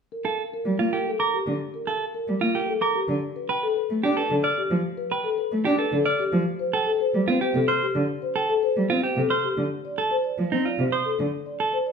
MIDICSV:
0, 0, Header, 1, 5, 480
1, 0, Start_track
1, 0, Key_signature, -2, "major"
1, 0, Tempo, 540541
1, 1422, Time_signature, 3, 2, 24, 8
1, 10585, End_track
2, 0, Start_track
2, 0, Title_t, "Celesta"
2, 0, Program_c, 0, 8
2, 1060, Note_on_c, 0, 86, 61
2, 1217, Note_off_c, 0, 86, 0
2, 2498, Note_on_c, 0, 86, 67
2, 2657, Note_off_c, 0, 86, 0
2, 3938, Note_on_c, 0, 89, 70
2, 4097, Note_off_c, 0, 89, 0
2, 5378, Note_on_c, 0, 89, 67
2, 5537, Note_off_c, 0, 89, 0
2, 6818, Note_on_c, 0, 89, 65
2, 6976, Note_off_c, 0, 89, 0
2, 8257, Note_on_c, 0, 89, 64
2, 8416, Note_off_c, 0, 89, 0
2, 9699, Note_on_c, 0, 87, 52
2, 9857, Note_off_c, 0, 87, 0
2, 10585, End_track
3, 0, Start_track
3, 0, Title_t, "Marimba"
3, 0, Program_c, 1, 12
3, 107, Note_on_c, 1, 70, 42
3, 230, Note_on_c, 1, 77, 45
3, 260, Note_off_c, 1, 70, 0
3, 381, Note_off_c, 1, 77, 0
3, 475, Note_on_c, 1, 70, 50
3, 623, Note_off_c, 1, 70, 0
3, 829, Note_on_c, 1, 70, 46
3, 953, Note_on_c, 1, 69, 45
3, 981, Note_off_c, 1, 70, 0
3, 1102, Note_off_c, 1, 69, 0
3, 1189, Note_on_c, 1, 67, 55
3, 1340, Note_off_c, 1, 67, 0
3, 1545, Note_on_c, 1, 70, 46
3, 1667, Note_on_c, 1, 77, 45
3, 1699, Note_off_c, 1, 70, 0
3, 1820, Note_off_c, 1, 77, 0
3, 1905, Note_on_c, 1, 70, 47
3, 2059, Note_off_c, 1, 70, 0
3, 2256, Note_on_c, 1, 70, 39
3, 2380, Note_on_c, 1, 69, 59
3, 2416, Note_off_c, 1, 70, 0
3, 2537, Note_off_c, 1, 69, 0
3, 2622, Note_on_c, 1, 67, 58
3, 2778, Note_off_c, 1, 67, 0
3, 2984, Note_on_c, 1, 71, 46
3, 3105, Note_on_c, 1, 79, 46
3, 3139, Note_off_c, 1, 71, 0
3, 3224, Note_on_c, 1, 69, 67
3, 3259, Note_off_c, 1, 79, 0
3, 3340, Note_on_c, 1, 71, 51
3, 3378, Note_off_c, 1, 69, 0
3, 3497, Note_off_c, 1, 71, 0
3, 3708, Note_on_c, 1, 71, 48
3, 3823, Note_on_c, 1, 69, 54
3, 3860, Note_off_c, 1, 71, 0
3, 3978, Note_off_c, 1, 69, 0
3, 4065, Note_on_c, 1, 67, 53
3, 4219, Note_off_c, 1, 67, 0
3, 4418, Note_on_c, 1, 71, 58
3, 4539, Note_on_c, 1, 79, 55
3, 4576, Note_off_c, 1, 71, 0
3, 4653, Note_on_c, 1, 69, 63
3, 4697, Note_off_c, 1, 79, 0
3, 4775, Note_on_c, 1, 71, 56
3, 4815, Note_off_c, 1, 69, 0
3, 4936, Note_off_c, 1, 71, 0
3, 5136, Note_on_c, 1, 71, 55
3, 5262, Note_on_c, 1, 69, 62
3, 5296, Note_off_c, 1, 71, 0
3, 5418, Note_off_c, 1, 69, 0
3, 5499, Note_on_c, 1, 67, 59
3, 5657, Note_off_c, 1, 67, 0
3, 5856, Note_on_c, 1, 72, 55
3, 5982, Note_on_c, 1, 79, 53
3, 6016, Note_off_c, 1, 72, 0
3, 6097, Note_on_c, 1, 69, 64
3, 6138, Note_off_c, 1, 79, 0
3, 6221, Note_on_c, 1, 72, 58
3, 6256, Note_off_c, 1, 69, 0
3, 6377, Note_off_c, 1, 72, 0
3, 6589, Note_on_c, 1, 72, 45
3, 6702, Note_on_c, 1, 69, 56
3, 6740, Note_off_c, 1, 72, 0
3, 6858, Note_off_c, 1, 69, 0
3, 6947, Note_on_c, 1, 67, 59
3, 7100, Note_off_c, 1, 67, 0
3, 7301, Note_on_c, 1, 72, 46
3, 7424, Note_on_c, 1, 79, 47
3, 7458, Note_off_c, 1, 72, 0
3, 7542, Note_on_c, 1, 69, 68
3, 7579, Note_off_c, 1, 79, 0
3, 7664, Note_on_c, 1, 72, 56
3, 7698, Note_off_c, 1, 69, 0
3, 7819, Note_off_c, 1, 72, 0
3, 8023, Note_on_c, 1, 72, 45
3, 8149, Note_on_c, 1, 69, 54
3, 8178, Note_off_c, 1, 72, 0
3, 8300, Note_off_c, 1, 69, 0
3, 8384, Note_on_c, 1, 67, 56
3, 8539, Note_off_c, 1, 67, 0
3, 8746, Note_on_c, 1, 74, 49
3, 8858, Note_on_c, 1, 81, 48
3, 8899, Note_off_c, 1, 74, 0
3, 8978, Note_on_c, 1, 72, 63
3, 9017, Note_off_c, 1, 81, 0
3, 9094, Note_on_c, 1, 74, 43
3, 9137, Note_off_c, 1, 72, 0
3, 9255, Note_off_c, 1, 74, 0
3, 9463, Note_on_c, 1, 74, 39
3, 9582, Note_on_c, 1, 72, 44
3, 9618, Note_off_c, 1, 74, 0
3, 9738, Note_off_c, 1, 72, 0
3, 9815, Note_on_c, 1, 69, 51
3, 9975, Note_off_c, 1, 69, 0
3, 10179, Note_on_c, 1, 74, 39
3, 10296, Note_on_c, 1, 81, 40
3, 10337, Note_off_c, 1, 74, 0
3, 10417, Note_on_c, 1, 72, 56
3, 10456, Note_off_c, 1, 81, 0
3, 10536, Note_on_c, 1, 74, 44
3, 10576, Note_off_c, 1, 72, 0
3, 10585, Note_off_c, 1, 74, 0
3, 10585, End_track
4, 0, Start_track
4, 0, Title_t, "Clean electric guitar"
4, 0, Program_c, 2, 27
4, 223, Note_on_c, 2, 69, 48
4, 378, Note_off_c, 2, 69, 0
4, 703, Note_on_c, 2, 65, 58
4, 825, Note_on_c, 2, 67, 53
4, 858, Note_off_c, 2, 65, 0
4, 979, Note_off_c, 2, 67, 0
4, 1064, Note_on_c, 2, 70, 65
4, 1219, Note_off_c, 2, 70, 0
4, 1663, Note_on_c, 2, 69, 49
4, 1818, Note_off_c, 2, 69, 0
4, 2142, Note_on_c, 2, 65, 68
4, 2264, Note_on_c, 2, 67, 54
4, 2298, Note_off_c, 2, 65, 0
4, 2419, Note_off_c, 2, 67, 0
4, 2502, Note_on_c, 2, 70, 64
4, 2658, Note_off_c, 2, 70, 0
4, 3101, Note_on_c, 2, 71, 57
4, 3257, Note_off_c, 2, 71, 0
4, 3583, Note_on_c, 2, 67, 64
4, 3701, Note_on_c, 2, 69, 59
4, 3738, Note_off_c, 2, 67, 0
4, 3858, Note_off_c, 2, 69, 0
4, 3942, Note_on_c, 2, 74, 62
4, 4098, Note_off_c, 2, 74, 0
4, 4542, Note_on_c, 2, 71, 53
4, 4698, Note_off_c, 2, 71, 0
4, 5019, Note_on_c, 2, 67, 70
4, 5134, Note_off_c, 2, 67, 0
4, 5138, Note_on_c, 2, 69, 62
4, 5296, Note_off_c, 2, 69, 0
4, 5377, Note_on_c, 2, 74, 69
4, 5536, Note_off_c, 2, 74, 0
4, 5980, Note_on_c, 2, 69, 58
4, 6137, Note_off_c, 2, 69, 0
4, 6462, Note_on_c, 2, 65, 63
4, 6578, Note_off_c, 2, 65, 0
4, 6582, Note_on_c, 2, 67, 65
4, 6738, Note_off_c, 2, 67, 0
4, 6821, Note_on_c, 2, 72, 71
4, 6978, Note_off_c, 2, 72, 0
4, 7420, Note_on_c, 2, 69, 57
4, 7577, Note_off_c, 2, 69, 0
4, 7902, Note_on_c, 2, 65, 67
4, 8019, Note_off_c, 2, 65, 0
4, 8023, Note_on_c, 2, 67, 55
4, 8178, Note_off_c, 2, 67, 0
4, 8262, Note_on_c, 2, 72, 69
4, 8418, Note_off_c, 2, 72, 0
4, 8863, Note_on_c, 2, 69, 52
4, 9018, Note_off_c, 2, 69, 0
4, 9341, Note_on_c, 2, 63, 54
4, 9460, Note_on_c, 2, 65, 51
4, 9498, Note_off_c, 2, 63, 0
4, 9617, Note_off_c, 2, 65, 0
4, 9700, Note_on_c, 2, 72, 58
4, 9857, Note_off_c, 2, 72, 0
4, 10302, Note_on_c, 2, 69, 43
4, 10458, Note_off_c, 2, 69, 0
4, 10585, End_track
5, 0, Start_track
5, 0, Title_t, "Cello"
5, 0, Program_c, 3, 42
5, 581, Note_on_c, 3, 55, 46
5, 671, Note_off_c, 3, 55, 0
5, 701, Note_on_c, 3, 58, 59
5, 791, Note_off_c, 3, 58, 0
5, 1305, Note_on_c, 3, 50, 54
5, 1394, Note_off_c, 3, 50, 0
5, 2023, Note_on_c, 3, 55, 44
5, 2113, Note_off_c, 3, 55, 0
5, 2145, Note_on_c, 3, 58, 64
5, 2234, Note_off_c, 3, 58, 0
5, 2740, Note_on_c, 3, 50, 57
5, 2831, Note_off_c, 3, 50, 0
5, 3464, Note_on_c, 3, 57, 44
5, 3553, Note_off_c, 3, 57, 0
5, 3580, Note_on_c, 3, 62, 68
5, 3671, Note_off_c, 3, 62, 0
5, 3822, Note_on_c, 3, 50, 59
5, 3912, Note_off_c, 3, 50, 0
5, 4180, Note_on_c, 3, 53, 60
5, 4271, Note_off_c, 3, 53, 0
5, 4901, Note_on_c, 3, 57, 51
5, 4991, Note_off_c, 3, 57, 0
5, 5022, Note_on_c, 3, 62, 68
5, 5112, Note_off_c, 3, 62, 0
5, 5261, Note_on_c, 3, 50, 53
5, 5351, Note_off_c, 3, 50, 0
5, 5619, Note_on_c, 3, 53, 62
5, 5710, Note_off_c, 3, 53, 0
5, 6341, Note_on_c, 3, 55, 48
5, 6431, Note_off_c, 3, 55, 0
5, 6461, Note_on_c, 3, 60, 68
5, 6552, Note_off_c, 3, 60, 0
5, 6702, Note_on_c, 3, 48, 56
5, 6792, Note_off_c, 3, 48, 0
5, 7063, Note_on_c, 3, 50, 58
5, 7152, Note_off_c, 3, 50, 0
5, 7783, Note_on_c, 3, 55, 47
5, 7873, Note_off_c, 3, 55, 0
5, 7900, Note_on_c, 3, 60, 66
5, 7991, Note_off_c, 3, 60, 0
5, 8141, Note_on_c, 3, 48, 56
5, 8232, Note_off_c, 3, 48, 0
5, 8502, Note_on_c, 3, 50, 49
5, 8592, Note_off_c, 3, 50, 0
5, 9220, Note_on_c, 3, 53, 42
5, 9311, Note_off_c, 3, 53, 0
5, 9345, Note_on_c, 3, 60, 58
5, 9434, Note_off_c, 3, 60, 0
5, 9581, Note_on_c, 3, 48, 54
5, 9671, Note_off_c, 3, 48, 0
5, 9939, Note_on_c, 3, 50, 52
5, 10030, Note_off_c, 3, 50, 0
5, 10585, End_track
0, 0, End_of_file